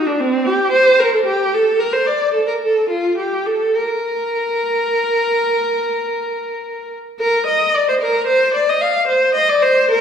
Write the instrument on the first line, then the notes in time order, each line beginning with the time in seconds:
viola
0.06 D4
0.20 C4
0.46 G4
0.72 C5
0.99 A#4
1.13 A4
1.26 G4
1.54 A4
1.79 A#4
1.93 C5
2.06 D5
2.33 A4
2.47 A#4
2.63 A4
2.90 F4
3.18 G4
3.46 A4
3.75 A#4
7.19 A#4
7.47 D#5
7.74 D5
7.88 C5
8.02 A#4
8.27 C5
8.54 D5
8.69 D#5
8.81 F5
9.08 C5
9.35 D#5
9.49 D5
9.62 C5
9.91 A#4